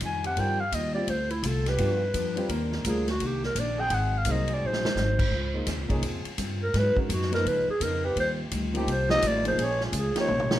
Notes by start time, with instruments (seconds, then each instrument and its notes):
0.00 upright bass F2, steel-string acoustic guitar D#3 G3 C4 F4, kick, hi-hat pedal, ride
0.06 clarinet G#5
0.23 trombone section F3 C4 D#4 G4, clarinet F#5, ride
0.36 upright bass G2, steel-string acoustic guitar D#3 G3 C4, grand piano G3 C4 F4 A#4, kick, ride
0.40 steel-string acoustic guitar F4, clarinet G5
0.61 clarinet F5
0.72 upright bass D#2, steel-string acoustic guitar D#3 G3 C4 F4, clarinet D#5, kick, hi-hat pedal, ride
0.94 grand piano G3 C4 F4 G4, clarinet D5
1.07 upright bass D2, steel-string acoustic guitar D3 A3 C4 F4, clarinet C5, kick, ride
1.30 clarinet E4, ride
1.43 upright bass C2, steel-string acoustic guitar D3 A3 C4 F4, kick, hi-hat pedal, ride
1.47 clarinet A4
1.66 trombone section F3 B3 D4 G4, clarinet B4, snare, ride
1.78 upright bass G2, steel-string acoustic guitar G2 F3 B3 D4, grand piano B3 D4 F4 G4, kick, ride
2.14 upright bass F2, steel-string acoustic guitar G2 F3 B3 D4, kick, hi-hat pedal, ride
2.36 grand piano G3 C4 F4 G4, ride
2.48 upright bass D#2, steel-string acoustic guitar C3 D#3 A#3 D4, trombone section D#3 C4 D4 A#4, kick, ride
2.72 snare
2.84 upright bass D2, steel-string acoustic guitar C3 D#3 A#3 D4, grand piano G3 C4 F4 A#4, clarinet G#4, kick, hi-hat pedal, ride
3.08 clarinet F#4, snare, ride
3.20 upright bass C2, steel-string acoustic guitar C3 D#3 A#3 D4, kick, ride
3.26 clarinet G4
3.43 clarinet A#4, snare
3.55 upright bass A#1, steel-string acoustic guitar C3 D#3 A#3 D4, kick, hi-hat pedal, ride
3.60 clarinet D5
3.77 trombone section F#3 C4 D#4 G#4, clarinet G5
3.90 upright bass G#1, steel-string acoustic guitar G#2 F#3 C4 D#4, kick, ride
3.94 clarinet F#5
4.18 clarinet F5
4.25 upright bass C2, steel-string acoustic guitar G#2 F#3 C4 D#4, grand piano A#3 D#4 G#4 C5, kick, hi-hat pedal, ride
4.31 clarinet D#5
4.48 trombone section F#3 C4 D#4 G#4, ride
4.53 clarinet D5
4.61 upright bass A#1, steel-string acoustic guitar G#2 F#3 C4
4.65 steel-string acoustic guitar D#4, clarinet C5
4.73 snare
4.85 snare
4.95 upright bass G#1, steel-string acoustic guitar G#2 F#3, snare, hi-hat pedal
5.00 steel-string acoustic guitar C4 D#4
5.19 kick, crash
5.31 upright bass C#2, steel-string acoustic guitar C#3 G#3 C4 F4, kick
5.54 grand piano A#3 D#4 G#4 C5
5.66 upright bass D#2, steel-string acoustic guitar C#3 G#3 C4 F4, kick, snare, hi-hat pedal, ride
5.77 upright bass C#2
5.88 upright bass C2, trombone section F3 C4 C#4 G#4, grand piano A#3 D#4 G#4 C#5, kick, ride
6.01 upright bass F2, steel-string acoustic guitar C#3 G#3 C4 F4, kick, ride
6.25 muted upright bass stroke, ride
6.38 upright bass G2, steel-string acoustic guitar C#3 G#3 C4 F4, kick, hi-hat pedal, ride
6.63 clarinet A#4
6.74 upright bass G#2, steel-string acoustic guitar G#2 F#3 B3 D#4, kick, snare, ride
6.78 clarinet B4
6.96 grand piano G#3 C#4 F#4 A#4, kick
7.00 clarinet D#4
7.09 upright bass F#2, steel-string acoustic guitar G#2 F#3 B3 D#4, clarinet F#4, kick, hi-hat pedal, ride
7.22 snare
7.31 grand piano F3 A#3 D#4 B4, clarinet A#4, snare, ride
7.45 upright bass C#2, steel-string acoustic guitar C#3 F3 B3 D#4, clarinet B4, kick, ride
7.68 clarinet G#4, muted upright bass stroke
7.80 upright bass F2, steel-string acoustic guitar C#3 F3 B3 D#4, clarinet A#4, kick, hi-hat pedal, ride
8.04 trombone section F3 C4 D#4 G4, clarinet B4
8.16 upright bass D#2, steel-string acoustic guitar D#3 G3 C4 F4, clarinet C5, kick, ride
8.51 upright bass D2, steel-string acoustic guitar D#3 G3 C4 F4, kick, hi-hat pedal, ride
8.74 grand piano F3 A#3 D#4 G4, trombone section F3 C4 D#4 G4, ride
8.86 upright bass C2, steel-string acoustic guitar D#3 G3 C4 F4, kick, ride
8.91 clarinet C5
9.09 grand piano F3 A#3 D#4 G4, clarinet D#5, snare
9.22 upright bass A1, steel-string acoustic guitar D#3 G3 C4 F4, kick, hi-hat pedal, ride
9.27 clarinet D5
9.45 grand piano F3 A#3 D#4 G#4, clarinet C5, ride
9.56 upright bass A#1, steel-string acoustic guitar A#2 G#3 C#4 F4, trombone section F3 A#3 C#4 G#4, kick, ride
9.64 clarinet C#5
9.81 snare
9.86 clarinet F4
9.92 upright bass C#2, steel-string acoustic guitar A#2 G#3 C#4 F4, kick, hi-hat pedal, ride
9.99 clarinet G#4
10.15 grand piano F3 A#3 D#4 G4, muted upright bass stroke, snare, ride
10.21 clarinet C#5
10.27 upright bass A#1, steel-string acoustic guitar D#3 A#3 C#4 G4, mid tom
10.40 mid tom
10.50 grand piano F3 A#3 D#4 G4, snare